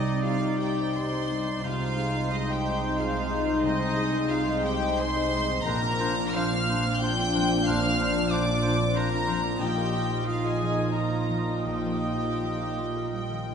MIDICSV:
0, 0, Header, 1, 11, 480
1, 0, Start_track
1, 0, Tempo, 699301
1, 1123, Time_signature, 3, 2, 24, 8
1, 1123, Tempo, 660793
1, 3043, Tempo, 689655
1, 4483, Tempo, 652174
1, 7363, Tempo, 681818
1, 7843, Tempo, 723764
1, 9569, End_track
2, 0, Start_track
2, 0, Title_t, "Violin section"
2, 0, Program_c, 0, 48
2, 0, Note_on_c, 0, 75, 81
2, 162, Note_off_c, 0, 75, 0
2, 168, Note_on_c, 0, 77, 75
2, 402, Note_on_c, 0, 79, 67
2, 405, Note_off_c, 0, 77, 0
2, 647, Note_off_c, 0, 79, 0
2, 651, Note_on_c, 0, 84, 78
2, 1122, Note_off_c, 0, 84, 0
2, 1123, Note_on_c, 0, 77, 87
2, 1615, Note_off_c, 0, 77, 0
2, 1621, Note_on_c, 0, 75, 80
2, 1739, Note_on_c, 0, 79, 80
2, 1740, Note_off_c, 0, 75, 0
2, 2098, Note_off_c, 0, 79, 0
2, 2102, Note_on_c, 0, 77, 76
2, 2568, Note_on_c, 0, 75, 88
2, 2570, Note_off_c, 0, 77, 0
2, 3033, Note_off_c, 0, 75, 0
2, 3051, Note_on_c, 0, 77, 82
2, 3285, Note_on_c, 0, 79, 83
2, 3289, Note_off_c, 0, 77, 0
2, 3526, Note_off_c, 0, 79, 0
2, 3539, Note_on_c, 0, 84, 98
2, 4001, Note_off_c, 0, 84, 0
2, 4003, Note_on_c, 0, 82, 99
2, 4476, Note_on_c, 0, 89, 98
2, 4486, Note_off_c, 0, 82, 0
2, 4967, Note_off_c, 0, 89, 0
2, 4973, Note_on_c, 0, 91, 99
2, 5448, Note_off_c, 0, 91, 0
2, 5450, Note_on_c, 0, 89, 101
2, 5926, Note_off_c, 0, 89, 0
2, 5931, Note_on_c, 0, 86, 91
2, 6400, Note_off_c, 0, 86, 0
2, 6402, Note_on_c, 0, 82, 89
2, 6878, Note_off_c, 0, 82, 0
2, 6881, Note_on_c, 0, 79, 82
2, 7366, Note_off_c, 0, 79, 0
2, 7384, Note_on_c, 0, 77, 69
2, 7490, Note_off_c, 0, 77, 0
2, 7495, Note_on_c, 0, 80, 67
2, 7840, Note_on_c, 0, 82, 55
2, 7849, Note_off_c, 0, 80, 0
2, 8317, Note_off_c, 0, 82, 0
2, 8318, Note_on_c, 0, 79, 59
2, 9264, Note_off_c, 0, 79, 0
2, 9294, Note_on_c, 0, 79, 51
2, 9569, Note_off_c, 0, 79, 0
2, 9569, End_track
3, 0, Start_track
3, 0, Title_t, "Oboe"
3, 0, Program_c, 1, 68
3, 0, Note_on_c, 1, 74, 58
3, 1096, Note_off_c, 1, 74, 0
3, 1126, Note_on_c, 1, 72, 60
3, 3882, Note_off_c, 1, 72, 0
3, 4000, Note_on_c, 1, 72, 65
3, 4108, Note_off_c, 1, 72, 0
3, 4241, Note_on_c, 1, 72, 64
3, 4350, Note_off_c, 1, 72, 0
3, 4488, Note_on_c, 1, 72, 67
3, 4598, Note_off_c, 1, 72, 0
3, 4738, Note_on_c, 1, 72, 58
3, 4844, Note_off_c, 1, 72, 0
3, 4985, Note_on_c, 1, 72, 64
3, 5089, Note_off_c, 1, 72, 0
3, 5218, Note_on_c, 1, 72, 60
3, 5323, Note_off_c, 1, 72, 0
3, 5455, Note_on_c, 1, 72, 67
3, 5561, Note_off_c, 1, 72, 0
3, 5699, Note_on_c, 1, 72, 59
3, 5803, Note_off_c, 1, 72, 0
3, 5930, Note_on_c, 1, 72, 62
3, 6035, Note_off_c, 1, 72, 0
3, 6153, Note_on_c, 1, 72, 53
3, 6261, Note_off_c, 1, 72, 0
3, 6392, Note_on_c, 1, 72, 59
3, 6500, Note_off_c, 1, 72, 0
3, 6632, Note_on_c, 1, 72, 54
3, 6741, Note_off_c, 1, 72, 0
3, 6881, Note_on_c, 1, 75, 56
3, 7337, Note_off_c, 1, 75, 0
3, 7364, Note_on_c, 1, 75, 52
3, 7834, Note_off_c, 1, 75, 0
3, 7848, Note_on_c, 1, 75, 48
3, 8311, Note_off_c, 1, 75, 0
3, 8325, Note_on_c, 1, 75, 47
3, 9516, Note_off_c, 1, 75, 0
3, 9569, End_track
4, 0, Start_track
4, 0, Title_t, "Violin section"
4, 0, Program_c, 2, 48
4, 0, Note_on_c, 2, 63, 67
4, 152, Note_on_c, 2, 65, 64
4, 163, Note_off_c, 2, 63, 0
4, 398, Note_on_c, 2, 67, 68
4, 402, Note_off_c, 2, 65, 0
4, 644, Note_on_c, 2, 72, 70
4, 650, Note_off_c, 2, 67, 0
4, 1119, Note_off_c, 2, 72, 0
4, 1129, Note_on_c, 2, 65, 81
4, 1603, Note_on_c, 2, 63, 67
4, 1608, Note_off_c, 2, 65, 0
4, 1731, Note_off_c, 2, 63, 0
4, 1735, Note_on_c, 2, 67, 70
4, 2089, Note_off_c, 2, 67, 0
4, 2098, Note_on_c, 2, 65, 66
4, 2568, Note_off_c, 2, 65, 0
4, 2581, Note_on_c, 2, 63, 83
4, 3049, Note_off_c, 2, 63, 0
4, 3049, Note_on_c, 2, 65, 71
4, 3285, Note_on_c, 2, 67, 77
4, 3288, Note_off_c, 2, 65, 0
4, 3531, Note_off_c, 2, 67, 0
4, 3544, Note_on_c, 2, 72, 89
4, 3985, Note_on_c, 2, 70, 96
4, 4004, Note_off_c, 2, 72, 0
4, 4467, Note_off_c, 2, 70, 0
4, 4480, Note_on_c, 2, 77, 82
4, 4969, Note_off_c, 2, 77, 0
4, 4971, Note_on_c, 2, 79, 100
4, 5442, Note_on_c, 2, 77, 96
4, 5447, Note_off_c, 2, 79, 0
4, 5912, Note_off_c, 2, 77, 0
4, 5932, Note_on_c, 2, 74, 80
4, 6400, Note_off_c, 2, 74, 0
4, 6403, Note_on_c, 2, 70, 84
4, 6868, Note_on_c, 2, 67, 76
4, 6878, Note_off_c, 2, 70, 0
4, 7350, Note_off_c, 2, 67, 0
4, 7356, Note_on_c, 2, 65, 61
4, 7479, Note_off_c, 2, 65, 0
4, 7490, Note_on_c, 2, 68, 65
4, 7847, Note_off_c, 2, 68, 0
4, 7847, Note_on_c, 2, 70, 52
4, 8320, Note_off_c, 2, 70, 0
4, 8331, Note_on_c, 2, 67, 57
4, 9271, Note_off_c, 2, 67, 0
4, 9288, Note_on_c, 2, 79, 44
4, 9569, Note_off_c, 2, 79, 0
4, 9569, End_track
5, 0, Start_track
5, 0, Title_t, "Grand piano"
5, 0, Program_c, 3, 0
5, 0, Control_c, 3, 64, 127
5, 0, Note_on_c, 3, 36, 52
5, 0, Note_on_c, 3, 67, 47
5, 0, Note_on_c, 3, 72, 43
5, 39, Note_on_c, 3, 63, 41
5, 116, Note_off_c, 3, 67, 0
5, 152, Note_on_c, 3, 55, 42
5, 231, Note_off_c, 3, 63, 0
5, 274, Note_on_c, 3, 63, 44
5, 352, Note_off_c, 3, 55, 0
5, 413, Note_on_c, 3, 55, 42
5, 478, Note_off_c, 3, 63, 0
5, 541, Note_off_c, 3, 72, 0
5, 541, Note_on_c, 3, 72, 46
5, 608, Note_off_c, 3, 55, 0
5, 661, Note_on_c, 3, 67, 50
5, 731, Note_off_c, 3, 72, 0
5, 771, Note_on_c, 3, 63, 44
5, 848, Note_off_c, 3, 67, 0
5, 899, Note_on_c, 3, 55, 46
5, 960, Note_off_c, 3, 63, 0
5, 1081, Note_off_c, 3, 55, 0
5, 1097, Note_off_c, 3, 36, 0
5, 1124, Note_on_c, 3, 36, 50
5, 1137, Control_c, 3, 64, 0
5, 1241, Note_on_c, 3, 72, 43
5, 1243, Control_c, 3, 64, 127
5, 1369, Note_on_c, 3, 68, 50
5, 1441, Note_off_c, 3, 72, 0
5, 1492, Note_on_c, 3, 63, 46
5, 1566, Note_off_c, 3, 68, 0
5, 1620, Note_on_c, 3, 56, 44
5, 1689, Note_off_c, 3, 63, 0
5, 1748, Note_on_c, 3, 63, 49
5, 1812, Note_off_c, 3, 56, 0
5, 1869, Note_on_c, 3, 56, 50
5, 1936, Note_off_c, 3, 63, 0
5, 1979, Note_on_c, 3, 72, 45
5, 2055, Note_off_c, 3, 56, 0
5, 2095, Note_on_c, 3, 68, 56
5, 2168, Note_off_c, 3, 72, 0
5, 2222, Note_on_c, 3, 63, 49
5, 2285, Note_off_c, 3, 68, 0
5, 2337, Note_on_c, 3, 56, 52
5, 2406, Note_off_c, 3, 63, 0
5, 2453, Note_on_c, 3, 63, 47
5, 2523, Note_off_c, 3, 56, 0
5, 2539, Note_off_c, 3, 36, 0
5, 2578, Note_on_c, 3, 36, 61
5, 2581, Control_c, 3, 64, 0
5, 2640, Note_off_c, 3, 63, 0
5, 2682, Control_c, 3, 64, 127
5, 2686, Note_on_c, 3, 72, 49
5, 2811, Note_on_c, 3, 68, 56
5, 2875, Note_off_c, 3, 72, 0
5, 2934, Note_on_c, 3, 63, 49
5, 2998, Note_off_c, 3, 68, 0
5, 3062, Note_on_c, 3, 56, 46
5, 3119, Note_off_c, 3, 63, 0
5, 3181, Note_on_c, 3, 63, 55
5, 3245, Note_off_c, 3, 56, 0
5, 3291, Note_on_c, 3, 56, 51
5, 3370, Note_off_c, 3, 63, 0
5, 3425, Note_on_c, 3, 72, 51
5, 3486, Note_off_c, 3, 56, 0
5, 3539, Note_on_c, 3, 68, 61
5, 3610, Note_off_c, 3, 72, 0
5, 3659, Note_on_c, 3, 63, 52
5, 3723, Note_off_c, 3, 68, 0
5, 3775, Note_on_c, 3, 56, 57
5, 3839, Note_off_c, 3, 63, 0
5, 3887, Note_on_c, 3, 63, 51
5, 3955, Note_off_c, 3, 56, 0
5, 3974, Note_off_c, 3, 36, 0
5, 3998, Note_on_c, 3, 34, 60
5, 4000, Note_off_c, 3, 63, 0
5, 4009, Control_c, 3, 64, 0
5, 4126, Note_on_c, 3, 72, 51
5, 4127, Control_c, 3, 64, 127
5, 4241, Note_on_c, 3, 65, 59
5, 4318, Note_off_c, 3, 72, 0
5, 4372, Note_on_c, 3, 62, 47
5, 4436, Note_off_c, 3, 65, 0
5, 4495, Note_on_c, 3, 53, 49
5, 4563, Note_off_c, 3, 62, 0
5, 4617, Note_on_c, 3, 62, 51
5, 4687, Note_off_c, 3, 53, 0
5, 4739, Note_on_c, 3, 53, 47
5, 4807, Note_off_c, 3, 62, 0
5, 4865, Note_on_c, 3, 72, 49
5, 4928, Note_off_c, 3, 53, 0
5, 4974, Note_on_c, 3, 65, 62
5, 5050, Note_off_c, 3, 72, 0
5, 5104, Note_on_c, 3, 62, 49
5, 5163, Note_off_c, 3, 65, 0
5, 5232, Note_on_c, 3, 53, 58
5, 5287, Note_off_c, 3, 62, 0
5, 5354, Note_on_c, 3, 62, 52
5, 5411, Note_off_c, 3, 53, 0
5, 5418, Note_off_c, 3, 34, 0
5, 5461, Control_c, 3, 64, 0
5, 5470, Note_on_c, 3, 34, 62
5, 5532, Note_off_c, 3, 62, 0
5, 5557, Control_c, 3, 64, 127
5, 5592, Note_on_c, 3, 72, 51
5, 5714, Note_on_c, 3, 65, 57
5, 5771, Note_off_c, 3, 72, 0
5, 5834, Note_on_c, 3, 62, 49
5, 5890, Note_off_c, 3, 65, 0
5, 5965, Note_on_c, 3, 53, 49
5, 6009, Note_off_c, 3, 62, 0
5, 6069, Note_on_c, 3, 62, 51
5, 6133, Note_off_c, 3, 53, 0
5, 6184, Note_on_c, 3, 53, 49
5, 6244, Note_off_c, 3, 62, 0
5, 6310, Note_on_c, 3, 72, 50
5, 6361, Note_off_c, 3, 53, 0
5, 6417, Note_on_c, 3, 65, 55
5, 6484, Note_off_c, 3, 72, 0
5, 6542, Note_on_c, 3, 62, 52
5, 6597, Note_off_c, 3, 65, 0
5, 6660, Note_on_c, 3, 53, 49
5, 6720, Note_off_c, 3, 62, 0
5, 6771, Note_on_c, 3, 62, 42
5, 6839, Note_off_c, 3, 53, 0
5, 6857, Note_off_c, 3, 34, 0
5, 6883, Note_off_c, 3, 62, 0
5, 6889, Control_c, 3, 64, 0
5, 6894, Note_on_c, 3, 34, 55
5, 6987, Control_c, 3, 64, 127
5, 7006, Note_on_c, 3, 70, 41
5, 7130, Note_on_c, 3, 65, 49
5, 7195, Note_off_c, 3, 70, 0
5, 7265, Note_on_c, 3, 63, 42
5, 7320, Note_off_c, 3, 65, 0
5, 7378, Note_on_c, 3, 53, 37
5, 7447, Note_off_c, 3, 63, 0
5, 7496, Note_on_c, 3, 63, 43
5, 7561, Note_off_c, 3, 53, 0
5, 7619, Note_on_c, 3, 53, 37
5, 7681, Note_off_c, 3, 63, 0
5, 7729, Note_on_c, 3, 70, 38
5, 7804, Note_off_c, 3, 53, 0
5, 7844, Note_on_c, 3, 65, 40
5, 7916, Note_off_c, 3, 70, 0
5, 7956, Note_on_c, 3, 63, 36
5, 8030, Note_off_c, 3, 65, 0
5, 8074, Note_on_c, 3, 53, 37
5, 8147, Note_off_c, 3, 63, 0
5, 8204, Note_on_c, 3, 63, 34
5, 8268, Note_off_c, 3, 53, 0
5, 8300, Note_off_c, 3, 34, 0
5, 8317, Note_on_c, 3, 34, 40
5, 8332, Control_c, 3, 64, 0
5, 8395, Note_off_c, 3, 63, 0
5, 8453, Control_c, 3, 64, 127
5, 8453, Note_on_c, 3, 70, 30
5, 8574, Note_on_c, 3, 65, 38
5, 8640, Note_off_c, 3, 70, 0
5, 8692, Note_on_c, 3, 63, 33
5, 8761, Note_off_c, 3, 65, 0
5, 8825, Note_on_c, 3, 53, 27
5, 8879, Note_off_c, 3, 63, 0
5, 8941, Note_on_c, 3, 63, 32
5, 9006, Note_off_c, 3, 53, 0
5, 9059, Note_on_c, 3, 53, 29
5, 9124, Note_off_c, 3, 63, 0
5, 9180, Note_on_c, 3, 70, 29
5, 9244, Note_off_c, 3, 53, 0
5, 9364, Note_off_c, 3, 70, 0
5, 9416, Note_on_c, 3, 63, 31
5, 9542, Note_on_c, 3, 53, 29
5, 9569, Note_off_c, 3, 34, 0
5, 9569, Note_off_c, 3, 53, 0
5, 9569, Note_off_c, 3, 63, 0
5, 9569, End_track
6, 0, Start_track
6, 0, Title_t, "Harp"
6, 0, Program_c, 4, 46
6, 0, Note_on_c, 4, 48, 54
6, 0, Note_on_c, 4, 55, 44
6, 0, Note_on_c, 4, 60, 45
6, 0, Note_on_c, 4, 63, 43
6, 0, Note_on_c, 4, 67, 51
6, 0, Note_on_c, 4, 79, 48
6, 0, Note_on_c, 4, 84, 51
6, 47, Note_on_c, 4, 72, 43
6, 159, Note_off_c, 4, 67, 0
6, 168, Note_on_c, 4, 67, 49
6, 403, Note_off_c, 4, 84, 0
6, 411, Note_on_c, 4, 84, 53
6, 651, Note_off_c, 4, 67, 0
6, 660, Note_on_c, 4, 67, 49
6, 769, Note_off_c, 4, 63, 0
6, 777, Note_on_c, 4, 63, 44
6, 892, Note_off_c, 4, 55, 0
6, 900, Note_on_c, 4, 55, 45
6, 1003, Note_off_c, 4, 60, 0
6, 1012, Note_on_c, 4, 60, 45
6, 1114, Note_off_c, 4, 48, 0
6, 1123, Note_on_c, 4, 48, 60
6, 1146, Note_off_c, 4, 67, 0
6, 1148, Note_off_c, 4, 55, 0
6, 1233, Note_off_c, 4, 60, 0
6, 1242, Note_on_c, 4, 60, 42
6, 1355, Note_off_c, 4, 63, 0
6, 1364, Note_on_c, 4, 63, 51
6, 1480, Note_off_c, 4, 72, 0
6, 1489, Note_on_c, 4, 72, 47
6, 1591, Note_off_c, 4, 79, 0
6, 1605, Note_on_c, 4, 65, 52
6, 1729, Note_on_c, 4, 75, 52
6, 1844, Note_off_c, 4, 84, 0
6, 1853, Note_on_c, 4, 84, 56
6, 1965, Note_off_c, 4, 75, 0
6, 1974, Note_on_c, 4, 75, 51
6, 2209, Note_off_c, 4, 63, 0
6, 2218, Note_on_c, 4, 63, 47
6, 2337, Note_on_c, 4, 56, 53
6, 2441, Note_off_c, 4, 60, 0
6, 2450, Note_on_c, 4, 60, 57
6, 2559, Note_off_c, 4, 48, 0
6, 2568, Note_on_c, 4, 48, 63
6, 2677, Note_off_c, 4, 56, 0
6, 2686, Note_on_c, 4, 56, 50
6, 2799, Note_off_c, 4, 63, 0
6, 2808, Note_on_c, 4, 63, 56
6, 2918, Note_off_c, 4, 72, 0
6, 2926, Note_on_c, 4, 72, 53
6, 3159, Note_off_c, 4, 75, 0
6, 3167, Note_on_c, 4, 75, 61
6, 3285, Note_off_c, 4, 84, 0
6, 3294, Note_on_c, 4, 84, 68
6, 3409, Note_off_c, 4, 75, 0
6, 3418, Note_on_c, 4, 75, 64
6, 3545, Note_on_c, 4, 68, 63
6, 3650, Note_off_c, 4, 63, 0
6, 3659, Note_on_c, 4, 63, 56
6, 3770, Note_off_c, 4, 56, 0
6, 3778, Note_on_c, 4, 56, 53
6, 3886, Note_off_c, 4, 60, 0
6, 3894, Note_on_c, 4, 60, 58
6, 4007, Note_on_c, 4, 46, 76
6, 4011, Note_off_c, 4, 65, 0
6, 4016, Note_off_c, 4, 48, 0
6, 4020, Note_off_c, 4, 75, 0
6, 4021, Note_off_c, 4, 63, 0
6, 4023, Note_off_c, 4, 56, 0
6, 4023, Note_off_c, 4, 68, 0
6, 4129, Note_on_c, 4, 58, 47
6, 4248, Note_on_c, 4, 62, 58
6, 4363, Note_off_c, 4, 72, 0
6, 4371, Note_on_c, 4, 72, 53
6, 4490, Note_on_c, 4, 65, 54
6, 4608, Note_on_c, 4, 74, 61
6, 4728, Note_off_c, 4, 84, 0
6, 4736, Note_on_c, 4, 84, 64
6, 4859, Note_off_c, 4, 74, 0
6, 4868, Note_on_c, 4, 74, 62
6, 4975, Note_off_c, 4, 65, 0
6, 4983, Note_on_c, 4, 65, 64
6, 5092, Note_off_c, 4, 62, 0
6, 5101, Note_on_c, 4, 62, 56
6, 5217, Note_on_c, 4, 53, 57
6, 5330, Note_off_c, 4, 58, 0
6, 5339, Note_on_c, 4, 58, 55
6, 5453, Note_off_c, 4, 46, 0
6, 5462, Note_on_c, 4, 46, 74
6, 5574, Note_off_c, 4, 53, 0
6, 5583, Note_on_c, 4, 53, 45
6, 5687, Note_off_c, 4, 62, 0
6, 5696, Note_on_c, 4, 62, 54
6, 5810, Note_off_c, 4, 72, 0
6, 5819, Note_on_c, 4, 72, 52
6, 5928, Note_off_c, 4, 65, 0
6, 5937, Note_on_c, 4, 65, 55
6, 6044, Note_off_c, 4, 74, 0
6, 6053, Note_on_c, 4, 74, 61
6, 6164, Note_off_c, 4, 84, 0
6, 6172, Note_on_c, 4, 84, 62
6, 6276, Note_off_c, 4, 74, 0
6, 6285, Note_on_c, 4, 74, 53
6, 6394, Note_off_c, 4, 65, 0
6, 6403, Note_on_c, 4, 65, 58
6, 6510, Note_off_c, 4, 62, 0
6, 6519, Note_on_c, 4, 62, 47
6, 6630, Note_off_c, 4, 53, 0
6, 6639, Note_on_c, 4, 53, 51
6, 6731, Note_off_c, 4, 60, 0
6, 6751, Note_off_c, 4, 58, 0
6, 6760, Note_on_c, 4, 58, 49
6, 6862, Note_off_c, 4, 46, 0
6, 6871, Note_on_c, 4, 46, 64
6, 6896, Note_off_c, 4, 62, 0
6, 6898, Note_off_c, 4, 74, 0
6, 6900, Note_off_c, 4, 84, 0
6, 6901, Note_off_c, 4, 72, 0
6, 6984, Note_off_c, 4, 58, 0
6, 6993, Note_on_c, 4, 58, 43
6, 7121, Note_on_c, 4, 63, 46
6, 7243, Note_on_c, 4, 70, 40
6, 7356, Note_off_c, 4, 65, 0
6, 7365, Note_on_c, 4, 65, 47
6, 7481, Note_on_c, 4, 75, 45
6, 7597, Note_on_c, 4, 82, 48
6, 7718, Note_off_c, 4, 75, 0
6, 7726, Note_on_c, 4, 75, 46
6, 7836, Note_off_c, 4, 65, 0
6, 7845, Note_on_c, 4, 65, 38
6, 7955, Note_off_c, 4, 63, 0
6, 7963, Note_on_c, 4, 63, 38
6, 8074, Note_off_c, 4, 53, 0
6, 8082, Note_on_c, 4, 53, 37
6, 8191, Note_off_c, 4, 58, 0
6, 8199, Note_on_c, 4, 58, 35
6, 8317, Note_off_c, 4, 46, 0
6, 8325, Note_on_c, 4, 46, 46
6, 8436, Note_off_c, 4, 53, 0
6, 8444, Note_on_c, 4, 53, 28
6, 8562, Note_off_c, 4, 63, 0
6, 8682, Note_off_c, 4, 70, 0
6, 8690, Note_on_c, 4, 70, 31
6, 8800, Note_off_c, 4, 65, 0
6, 8808, Note_on_c, 4, 65, 33
6, 8929, Note_on_c, 4, 77, 36
6, 9042, Note_off_c, 4, 82, 0
6, 9050, Note_on_c, 4, 82, 36
6, 9279, Note_off_c, 4, 65, 0
6, 9287, Note_on_c, 4, 65, 35
6, 9405, Note_on_c, 4, 51, 31
6, 9517, Note_off_c, 4, 53, 0
6, 9525, Note_on_c, 4, 53, 32
6, 9569, Note_off_c, 4, 46, 0
6, 9569, Note_off_c, 4, 51, 0
6, 9569, Note_off_c, 4, 53, 0
6, 9569, Note_off_c, 4, 58, 0
6, 9569, Note_off_c, 4, 65, 0
6, 9569, Note_off_c, 4, 70, 0
6, 9569, Note_off_c, 4, 75, 0
6, 9569, Note_off_c, 4, 77, 0
6, 9569, Note_off_c, 4, 82, 0
6, 9569, End_track
7, 0, Start_track
7, 0, Title_t, "Viola section"
7, 0, Program_c, 5, 48
7, 0, Note_on_c, 5, 60, 60
7, 0, Note_on_c, 5, 63, 61
7, 1093, Note_off_c, 5, 63, 0
7, 1094, Note_off_c, 5, 60, 0
7, 1126, Note_on_c, 5, 60, 70
7, 1129, Note_on_c, 5, 63, 62
7, 3971, Note_off_c, 5, 60, 0
7, 3972, Note_off_c, 5, 63, 0
7, 4005, Note_on_c, 5, 60, 69
7, 4008, Note_on_c, 5, 62, 77
7, 6849, Note_off_c, 5, 60, 0
7, 6851, Note_off_c, 5, 62, 0
7, 6875, Note_on_c, 5, 65, 64
7, 6879, Note_on_c, 5, 63, 59
7, 9569, Note_off_c, 5, 63, 0
7, 9569, Note_off_c, 5, 65, 0
7, 9569, End_track
8, 0, Start_track
8, 0, Title_t, "Clarinet"
8, 0, Program_c, 6, 71
8, 0, Note_on_c, 6, 63, 57
8, 1102, Note_off_c, 6, 63, 0
8, 1127, Note_on_c, 6, 63, 63
8, 3882, Note_off_c, 6, 63, 0
8, 4000, Note_on_c, 6, 62, 65
8, 4108, Note_off_c, 6, 62, 0
8, 4243, Note_on_c, 6, 62, 56
8, 4352, Note_off_c, 6, 62, 0
8, 4498, Note_on_c, 6, 62, 56
8, 4606, Note_off_c, 6, 62, 0
8, 4748, Note_on_c, 6, 62, 61
8, 4853, Note_off_c, 6, 62, 0
8, 4973, Note_on_c, 6, 62, 63
8, 5079, Note_off_c, 6, 62, 0
8, 5216, Note_on_c, 6, 62, 61
8, 5322, Note_off_c, 6, 62, 0
8, 5445, Note_on_c, 6, 62, 72
8, 5553, Note_off_c, 6, 62, 0
8, 5697, Note_on_c, 6, 62, 58
8, 5802, Note_off_c, 6, 62, 0
8, 5939, Note_on_c, 6, 62, 58
8, 6042, Note_off_c, 6, 62, 0
8, 6183, Note_on_c, 6, 62, 60
8, 6284, Note_off_c, 6, 62, 0
8, 6405, Note_on_c, 6, 62, 59
8, 6511, Note_off_c, 6, 62, 0
8, 6646, Note_on_c, 6, 62, 55
8, 6751, Note_off_c, 6, 62, 0
8, 6877, Note_on_c, 6, 65, 55
8, 7335, Note_off_c, 6, 65, 0
8, 7362, Note_on_c, 6, 65, 50
8, 7831, Note_off_c, 6, 65, 0
8, 7836, Note_on_c, 6, 65, 51
8, 8305, Note_off_c, 6, 65, 0
8, 8321, Note_on_c, 6, 65, 45
8, 9513, Note_off_c, 6, 65, 0
8, 9569, End_track
9, 0, Start_track
9, 0, Title_t, "French horn section"
9, 0, Program_c, 7, 60
9, 0, Note_on_c, 7, 55, 68
9, 0, Note_on_c, 7, 63, 71
9, 1096, Note_off_c, 7, 55, 0
9, 1097, Note_off_c, 7, 63, 0
9, 1132, Note_on_c, 7, 56, 67
9, 1138, Note_on_c, 7, 63, 77
9, 3890, Note_off_c, 7, 56, 0
9, 3890, Note_off_c, 7, 63, 0
9, 4008, Note_on_c, 7, 53, 87
9, 4012, Note_on_c, 7, 62, 88
9, 6851, Note_off_c, 7, 53, 0
9, 6853, Note_off_c, 7, 62, 0
9, 6882, Note_on_c, 7, 63, 77
9, 6885, Note_on_c, 7, 53, 75
9, 9513, Note_off_c, 7, 63, 0
9, 9514, Note_off_c, 7, 53, 0
9, 9569, End_track
10, 0, Start_track
10, 0, Title_t, "Cello section"
10, 0, Program_c, 8, 48
10, 0, Note_on_c, 8, 48, 62
10, 1099, Note_off_c, 8, 48, 0
10, 1119, Note_on_c, 8, 48, 68
10, 3967, Note_off_c, 8, 48, 0
10, 4003, Note_on_c, 8, 46, 74
10, 6874, Note_off_c, 8, 46, 0
10, 6883, Note_on_c, 8, 46, 66
10, 9261, Note_off_c, 8, 46, 0
10, 9294, Note_on_c, 8, 55, 45
10, 9569, Note_off_c, 8, 55, 0
10, 9569, End_track
11, 0, Start_track
11, 0, Title_t, "Double bass section"
11, 0, Program_c, 10, 48
11, 0, Note_on_c, 10, 36, 56
11, 1095, Note_off_c, 10, 36, 0
11, 1117, Note_on_c, 10, 36, 62
11, 3966, Note_off_c, 10, 36, 0
11, 4003, Note_on_c, 10, 34, 71
11, 6872, Note_off_c, 10, 34, 0
11, 6881, Note_on_c, 10, 34, 63
11, 9569, Note_off_c, 10, 34, 0
11, 9569, End_track
0, 0, End_of_file